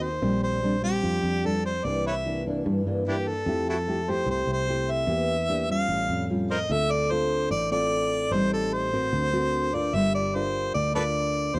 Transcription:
Already playing: D#2 D#3
0.03 C5
0.21 A#1 A#2 G3 C4 D4
0.43 C5
0.63 G3 C4 D4
0.82 G3 C4 D4 G4
1.03 F2 F3
1.23 F2
1.45 G3 C4 D4 A4
1.66 C5
1.84 C2 C3 E3 A#3 D4 D5
2.07 B4 C#5 E5
2.26 E3 A#3 D4
2.46 E3 A#3 D4
2.66 G2
2.86 G2 E3 A#3 D4
3.07 E3 A#3 D4 E4 G4
3.28 A4
3.46 F2 F3 A3 E4 G4
3.69 E4 F#4 A4
3.88 A3 E4 G4
4.08 A3 E4 G4 C5
4.26 C2 C3
4.30 C5
4.47 C2
4.53 C5
4.68 A3 E4 G4
4.91 E5
5.07 E2 E3 A#3 D4 G4
5.49 A#3 D4 G4
5.69 G3 C#4 F4 F5
5.88 A1 A2
6.09 F2
6.30 G3 C#4 F4
6.51 A#4 C5 D#5
6.70 D2 D3 C4 F4 A4 E5
6.91 D5
7.11 C4 F4 A4 C5
7.51 A1 A2 D5
7.71 C4 F4 A4 D5
8.31 A1 A2 G3 C4 D#4 C5
8.53 A4
8.73 C5
8.93 C4 F#4 A#4
9.13 D2 D3
9.33 C4 F#4 A#4
9.73 D4 F4 A#4 D5
9.94 G1 G3 E5
10.15 D5
10.35 D4 F4 A#4 C5
10.74 D2 D3 D5
10.95 D4 F4 A4 A#4 B4 D5
11.54 D#2 G3 C5

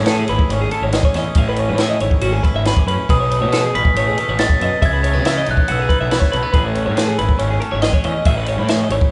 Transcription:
Already playing: A2 C#4
0.06 G#4 A4, snare, ride
0.19 G#4
0.28 G#1 E4 B4, ride
0.39 kick
0.49 G#1 C#4 C#5, ride
0.61 G#4
0.71 E4 A4, ride
0.82 G#1 C#5
0.92 G#4 D#5, snare, ride
1.03 C#5, kick
1.14 E2 C#4 D#5, snare, ride
1.35 A1 A2 G#4 E5, kick, ride
1.49 B4
1.56 C#4 C#5, ride
1.69 A2 B4
1.78 G#4 E5, snare, ride
1.90 D#5
2.00 G#1 E4 C#5, ride
2.11 kick
2.21 G#1 C#4 F#4, ride
2.33 G#4
2.44 E4 B4, kick, ride
2.54 G#1 E5
2.65 G#4 B4, snare, ride
2.77 C#5, kick
2.87 F#2 C#4 B4, ride
3.09 B1 B2 G#4 B4 D#6, kick, ride
3.20 C#5
3.30 A3 B4, ride
3.41 B2 C#5
3.52 G#4 A4, snare, ride
3.64 G#4
3.73 A1 C#4 B4 B6, ride
3.85 kick
3.95 A1 A3 C#5, ride
4.08 G#4
4.16 C#4 A4, ride
4.29 A1 C#5
4.39 A2 D#5 A6, snare, ride
4.49 C#5, kick
4.59 F#2 B2 D#5, ride
4.81 C#2 C#3 E4 E5, kick, ride
4.86 G#6
4.93 B4
5.01 A3 C#5, ride
5.13 C#3 B3 B4
5.24 E4 E5, snare, ride
5.38 D#5
5.46 B1 D#4 C#5, ride
5.51 F#6
5.57 kick
5.68 B1 B3 F#4, ride
5.72 E6
5.79 G#4
5.89 D#4 B4, kick, ride
6.01 B1 E5
6.10 E4 B4, snare, ride
6.20 C#5, kick, snare
6.32 B1 A3 B4, ride
6.43 B3
6.53 A1 A2 G#4 B4, kick, ride
6.65 C#5
6.75 C#4 B4, ride
6.86 A2 C#5
6.96 G#4 A4, snare, ride
7.08 G#4
7.18 G#1 E4 B4, ride
7.29 kick
7.39 G#1 C#4 C#5, ride
7.51 G#4
7.60 C#4 A4, ride
7.71 G#1 E4 C#5
7.82 G#4 D#5, snare, ride
7.93 C#5, kick
8.04 E2 C#4 D#5, ride
8.25 A1 A2 G#4 E5, kick, ride
8.37 B4
8.46 C#4 C#5, ride
8.57 A2 B4
8.68 G#4 E5, snare, ride
8.82 D#5
8.90 G#1 E4 C#5, ride
9.01 kick

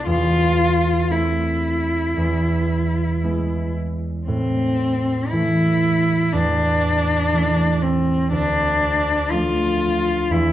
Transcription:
Already playing: C2 A3 C4 E4
0.06 E2 F4
1.10 A3 C4 E4
2.17 E2
3.24 G#3 B3 E4
4.27 A2 C4
5.30 E3 A3 E4
6.33 E2 D4
7.33 E3 A3 E4
7.82 C4
8.32 D2 D4
9.31 F3 A3 D4 F4
10.30 E2 E4

